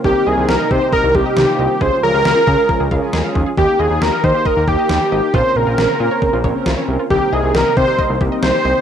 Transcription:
<<
  \new Staff \with { instrumentName = "Analog synth lead" } { \time 4/4 \key c \phrygian \tempo 4 = 136 g'8 aes'8 bes'8 c''8 bes'8 g'4. | c''8 bes'2. r8 | g'8 aes'8 bes'8 c''8 bes'8 g'4. | c''8 bes'2. r8 |
g'8 aes'8 bes'8 c''4 r8 c''4 | }
  \new Staff \with { instrumentName = "Synth pluck" } { \time 4/4 \key c \phrygian ees16 g'16 ees''16 ees16 g'16 ees''16 ees16 g'16 ees''16 ees16 g'16 ees''16 ees16 g'16 ees''16 ees16 | aes'16 r16 f16 aes'16 r16 f16 aes'16 f''16 f16 aes'16 f''16 f16 aes'16 f''16 f16 aes'16 | ees16 g'16 ees''16 ees16 g'16 ees''16 ees16 g'16 ees''16 ees16 g'16 ees''16 ees16 g'16 ees''16 ees16 | f'16 r16 des16 f'16 r16 des16 f'16 des''16 des16 f'16 des''16 des16 f'16 des''16 des16 f'16 |
ees16 g'16 ees''16 ees16 g'16 ees''16 ees16 g'16 ees''16 ees16 g'16 ees''16 ees16 g'16 ees''16 ees16 | }
  \new Staff \with { instrumentName = "Analog polysynth" } { \time 4/4 \key c \phrygian <c' ees' bes'>8 <c' ees' bes'>8. r16 <c' ees' g'>8. r16 <c' ees' bes'>8 r16 <c' ees' f'>8 r16 | <des' f' aes'>8 <des' f' g'>8. r16 <des' f' aes'>8. r16 <des' f' aes'>8 r16 <des' f' aes'>8 r16 | bes8 <bes ees' f'>8. r16 <bes ees' g'>8. r16 <bes ees' g'>8 r16 <bes ees' g'>8 r16 | <c' des' bes'>8 <c' des' bes'>8. r16 <c' des' bes'>8. r16 <c' des' bes'>8 r16 <c' des' bes'>8 r16 |
<c' ees' bes'>8 <c' ees' bes'>8. r16 <c' ees' bes'>8. r16 <c' ees' bes'>8 r16 <c' ees' g'>8 r16 | }
  \new Staff \with { instrumentName = "Analog synth pad" } { \time 4/4 \key c \phrygian <c g bes ees'>1 | <des aes des' f'>1 | <ees ees' g' bes'>1 | <des bes c''>1 |
<c g bes ees'>1 | }
  \new Staff \with { instrumentName = "Analog synth bass" } { \clef bass \time 4/4 \key c \phrygian c,16 r16 c,16 c,16 c,16 r16 c16 r8 c,16 c,16 r16 c,16 r16 c,16 r16 | des,16 r16 des,16 des,16 des,16 r16 des16 r8 des,16 des,16 r16 ees,16 r16 ees,16 r16 | ees,16 r16 ees,16 ees,16 ees,16 r16 ees16 r8 ees,16 ees,16 r16 ees,16 r16 aes,,16 r16 | bes,,16 r16 bes,,16 bes,,16 bes,,16 r16 bes,16 r8 bes,,16 bes,,16 r16 c,16 r16 c,16 r16 |
c,16 r16 c,16 c,16 c,16 r16 c16 r8 c,16 c,16 r16 c,16 r16 c,16 r16 | }
  \new DrumStaff \with { instrumentName = "Drums" } \drummode { \time 4/4 bd4 sn8 bd8 bd8 bd8 sn4 | bd4 sn8 bd8 bd8 bd8 sn8 bd8 | bd4 sn8 bd8 bd8 bd8 sn4 | bd4 sn4 bd8 bd8 sn4 |
bd4 sn8 bd8 bd8 bd8 sn4 | }
>>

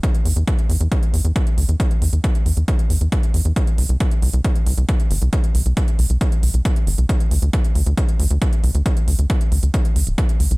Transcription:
<<
  \new Staff \with { instrumentName = "Analog synth bass" } { \clef bass \time 4/4 \key c \major \tempo 4 = 136 r8 e,16 e,16 r8 e,16 e,16 r8 e,16 e,16 r8 d,16 e,16 | r8 e,16 e,16 r8 e,16 e,16 r8 e,16 e,16 r8 e,16 e,16 | r8 c,16 c,16 r8 c,16 c,16 r8 c,16 c,16 r8 g,,16 c,16 | r8 c,16 c,16 r8 c,16 c,16 r8 c,16 c,16 r8 g,,16 c,16 |
r8 d,16 d,16 r8 d,16 d,16 r8 d,16 d,16 r8 c,16 d,16 | r8 d,16 d,16 r8 d,16 d,16 r8 d,16 d,,16 r8 d,16 c,16 | }
  \new DrumStaff \with { instrumentName = "Drums" } \drummode { \time 4/4 <hh bd>16 hh16 hho16 hh16 <hh bd>16 hh16 hho16 hh16 <hh bd>16 hh16 hho16 hh16 <hh bd>16 hh16 hho16 hh16 | <hh bd>16 hh16 hho16 hh16 <hh bd>16 hh16 hho16 hh16 <hh bd>16 hh16 hho16 hh16 <hh bd>16 hh16 hho16 hh16 | <hh bd>16 hh16 hho16 hh16 <hh bd>16 hh16 hho16 hh16 <hh bd>16 hh16 hho16 hh16 <hh bd>16 hh16 hho16 hh16 | <hh bd>16 hh16 hho16 hh16 <hh bd>16 hh16 hho16 hh16 <hh bd>16 hh16 hho16 hh16 <hh bd>16 hh16 hho16 hh16 |
<hh bd>16 hh16 hho16 hh16 <hh bd>16 hh16 hho16 hh16 <hh bd>16 hh16 hho16 hh16 <hh bd>16 hh16 hho16 hh16 | <hh bd>16 hh16 hho16 hh16 <hh bd>16 hh16 hho16 hh16 <hh bd>16 hh16 hho16 hh16 <hh bd>16 hh16 hho16 hh16 | }
>>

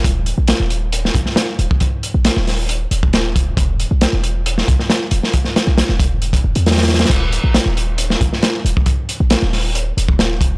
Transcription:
<<
  \new Staff \with { instrumentName = "808-style bass" } { \clef bass \time 4/4 \key fes \lydian \tempo 4 = 136 ees,,8. bes,,16 r16 ees,,4~ ees,,16 bes,,16 r8. ees,,16 r16 | r8. bes,,16 r16 ees,,4~ ees,,16 ees,,4. | e,,8. b,,16 r16 e,,4~ e,,16 b,,16 r8. e,,16 r16 | r8. b,,16 r16 e,,4~ e,,16 e,,16 e,4~ e,16 |
ees,,8. bes,,16 r16 ees,,4~ ees,,16 bes,,16 r8. ees,,16 r16 | r8. bes,,16 r16 ees,,4~ ees,,16 ees,,4. | }
  \new DrumStaff \with { instrumentName = "Drums" } \drummode { \time 4/4 <hh bd>8 hh8 <hh sn>8 hh8 hh16 sn16 <hh bd>16 sn16 <hh sn>8 hh16 bd16 | <hh bd>8 hh8 <hh sn>16 sn16 <hho sn>8 hh8 hh16 bd16 <hh sn>8 <hh bd>8 | <hh bd>8 hh8 <hh sn>8 hh8 hh16 sn16 <hh bd>16 sn16 <hh sn>8 hh16 sn16 | <hh bd>16 sn16 <hh sn>8 <hh sn>16 sn16 <hh bd>8 hh16 <hh bd>8 hh16 <hh sn>32 <hh sn>32 <hh sn>32 <hh sn>32 <hh sn>32 <hh sn>32 <hh sn>32 <hh sn>32 |
<cymc hh bd>8 hh8 <hh sn>8 hh8 hh16 sn16 <hh bd>16 sn16 <hh sn>8 hh16 bd16 | <hh bd>8 hh8 <hh sn>16 sn16 <hho sn>8 hh8 hh16 bd16 <hh sn>8 <hh bd>8 | }
>>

